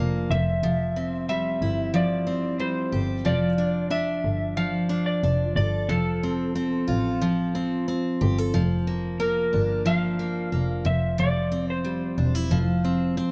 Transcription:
0.00 0.27 F1 medium
0.00 0.30 F3 medium
0.00 0.37 A#3 medium
0.00 0.36 D4 medium
0.00 0.26 F5 loud
0.30 0.60 F1 loud
0.30 0.63 F3 medium
0.30 1.28 E5 loud
0.63 1.57 F1 medium
0.63 1.93 F3 medium
0.96 2.25 C4 medium
1.29 2.58 G3 medium
1.29 1.95 E5 loud
1.61 2.89 G1 medium
1.61 3.61 E4 medium
1.94 3.25 F3 medium
1.94 2.57 D5 medium
2.27 3.32 C4 medium
2.59 3.24 G3 medium
2.59 3.06 C5 medium
2.92 3.25 G1 medium
2.92 3.32 G4 medium
3.25 4.24 F1 medium
3.25 4.56 F3 medium
3.25 3.91 D5 loud
3.58 3.89 D4 medium
3.90 4.88 D4 medium
3.90 4.57 E5 loud
4.25 5.20 G1 medium
4.57 5.89 F3 medium
4.57 5.04 F5 medium
4.89 5.22 D4 medium
5.06 5.55 D5 medium
5.23 5.54 F1 medium
5.23 5.96 D4 medium
5.56 5.87 G1 loud
5.56 8.21 A4 medium
5.56 5.91 D5 medium
5.89 6.84 F1 medium
5.89 7.21 F3 medium
5.89 7.83 A4 medium
6.23 6.54 C4 medium
6.55 7.54 C4 medium
6.88 8.17 A1 medium
6.88 9.52 F4 medium
7.21 8.53 F3 medium
7.55 7.87 C4 medium
7.88 8.61 C4 medium
8.21 8.52 G1 loud
8.21 8.38 G4 medium
8.38 8.61 A4 medium
8.54 9.49 F1 loud
8.54 9.84 F3 medium
8.87 9.18 A#3 medium
9.20 10.18 A#3 medium
9.20 9.82 A#4 medium
9.53 10.49 G1 medium
9.53 10.92 D4 medium
9.86 10.84 F3 medium
9.86 10.86 F5 medium
10.19 10.51 A#3 medium
10.52 10.83 F1 medium
10.52 10.92 A#3 medium
10.85 11.16 F1 loud
10.85 11.18 F3 medium
10.85 11.16 E5 medium
11.18 12.14 F1 loud
11.18 12.51 F3 medium
11.18 11.65 D5 loud
11.52 12.57 C4 medium
11.70 13.32 C5 medium
11.85 12.50 G3 medium
12.18 12.48 E1 medium
12.18 12.35 D4 medium
12.35 12.57 E4 medium
12.51 13.13 F1 medium
12.51 13.32 F3 medium
12.84 13.16 C4 medium
13.17 13.32 C4 medium

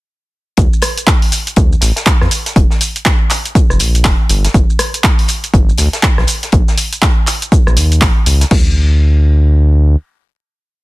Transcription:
0.57 0.68 D2 loud
0.57 kick loud
0.57 closed hi-hat medium
0.57 shaker soft
0.73 shaker soft
0.82 cross-stick medium
0.82 closed hi-hat medium
0.82 open hi-hat loud
0.82 shaker medium
0.97 closed hi-hat medium
0.97 shaker soft
1.07 kick loud
1.07 snare loud
1.07 clap loud
1.07 closed hi-hat medium
1.07 shaker soft
1.22 open hi-hat medium
1.32 closed hi-hat medium
1.32 open hi-hat loud
1.32 shaker medium
1.47 closed hi-hat medium
1.47 shaker soft
1.56 1.75 D2 medium
1.56 kick loud
1.56 closed hi-hat medium
1.56 shaker soft
1.72 shaker soft
1.81 1.92 A1 loud
1.81 snare soft
1.81 closed hi-hat medium
1.81 open hi-hat loud
1.81 shaker medium
1.96 snare medium
1.96 closed hi-hat medium
1.96 shaker soft
2.06 kick loud
2.06 snare loud
2.06 clap loud
2.06 closed hi-hat medium
2.06 shaker soft
2.21 2.28 F2 loud
2.21 cross-stick medium
2.21 snare medium
2.31 closed hi-hat medium
2.31 open hi-hat loud
2.31 shaker medium
2.46 snare soft
2.46 closed hi-hat medium
2.46 shaker soft
2.56 2.66 F1 loud
2.56 kick loud
2.56 closed hi-hat medium
2.56 shaker soft
2.70 snare medium
2.70 shaker soft
2.81 closed hi-hat medium
2.81 open hi-hat loud
2.81 shaker medium
2.96 closed hi-hat medium
2.96 shaker soft
3.05 kick loud
3.05 snare loud
3.05 clap loud
3.05 closed hi-hat medium
3.05 shaker soft
3.30 clap soft
3.30 closed hi-hat medium
3.30 open hi-hat loud
3.30 shaker medium
3.45 closed hi-hat medium
3.45 shaker soft
3.55 kick loud
3.55 closed hi-hat medium
3.55 shaker soft
3.70 3.81 F1 loud
3.70 cross-stick medium
3.70 shaker soft
3.79 4.06 A#1 medium
3.79 closed hi-hat medium
3.79 open hi-hat loud
3.79 shaker medium
3.95 closed hi-hat medium
3.95 shaker soft
4.04 4.15 F1 loud
4.04 kick loud
4.04 snare loud
4.04 clap loud
4.04 closed hi-hat loud
4.04 open hi-hat medium
4.04 shaker soft
4.29 4.48 G1 loud
4.29 closed hi-hat medium
4.29 open hi-hat loud
4.29 shaker medium
4.45 snare medium
4.45 closed hi-hat medium
4.45 shaker soft
4.54 4.64 G1 loud
4.54 kick loud
4.54 closed hi-hat medium
4.54 shaker soft
4.70 shaker soft
4.79 cross-stick medium
4.79 closed hi-hat medium
4.79 open hi-hat loud
4.79 shaker medium
4.94 closed hi-hat medium
4.94 shaker soft
5.03 kick loud
5.03 snare loud
5.03 clap loud
5.03 closed hi-hat loud
5.03 closed hi-hat medium
5.03 shaker soft
5.19 open hi-hat medium
5.28 closed hi-hat medium
5.28 open hi-hat loud
5.28 shaker medium
5.44 closed hi-hat medium
5.44 shaker soft
5.54 5.72 G1 medium
5.54 kick loud
5.54 closed hi-hat medium
5.54 shaker soft
5.69 shaker soft
5.78 5.88 D2 loud
5.78 snare soft
5.78 closed hi-hat medium
5.78 open hi-hat loud
5.78 shaker medium
5.93 snare medium
5.93 closed hi-hat medium
5.93 shaker soft
6.03 kick loud
6.03 snare loud
6.03 clap loud
6.03 closed hi-hat medium
6.03 closed hi-hat loud
6.03 shaker soft
6.18 6.25 A#1 loud
6.18 cross-stick medium
6.18 snare medium
6.27 closed hi-hat medium
6.27 open hi-hat loud
6.27 shaker medium
6.43 snare soft
6.43 closed hi-hat medium
6.43 shaker soft
6.52 6.63 A#1 loud
6.52 kick loud
6.52 closed hi-hat medium
6.52 shaker soft
6.68 snare medium
6.68 shaker soft
6.78 closed hi-hat medium
6.78 open hi-hat loud
6.78 shaker medium
6.93 closed hi-hat medium
6.93 shaker soft
7.02 kick loud
7.02 snare loud
7.02 clap loud
7.02 closed hi-hat medium
7.02 shaker soft
7.27 clap soft
7.27 closed hi-hat medium
7.27 open hi-hat loud
7.27 shaker medium
7.42 closed hi-hat medium
7.42 shaker soft
7.52 kick loud
7.52 closed hi-hat medium
7.52 shaker soft
7.67 7.78 A#1 loud
7.67 cross-stick medium
7.67 shaker soft
7.77 8.03 D#2 medium
7.77 closed hi-hat medium
7.77 open hi-hat loud
7.77 shaker medium
7.92 closed hi-hat medium
7.92 shaker soft
8.01 8.12 A#1 medium
8.01 kick loud
8.01 snare loud
8.01 clap loud
8.01 closed hi-hat loud
8.01 open hi-hat medium
8.01 shaker soft
8.26 8.45 C#2 loud
8.26 closed hi-hat medium
8.26 open hi-hat loud
8.26 shaker medium
8.41 snare soft
8.41 closed hi-hat medium
8.41 shaker soft
8.51 9.96 D2 loud
8.51 kick loud
8.51 crash medium

